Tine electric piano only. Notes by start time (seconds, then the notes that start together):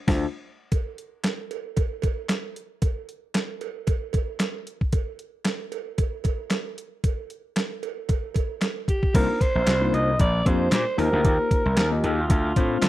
0.07 A3 D4 F4 C5
9.14 A#3 D4 D#4 F4 C5
9.67 F4 G4
9.81 A#3 D4 D#4 F4 C5
10.45 A#3 D4 F4 G4 C5
10.98 A#3 D#4 F4 G4 C5
11.77 G4 C5
11.92 A#3 D#4 F4 G4 D#5
12.56 A3 C4 D4 F4 C5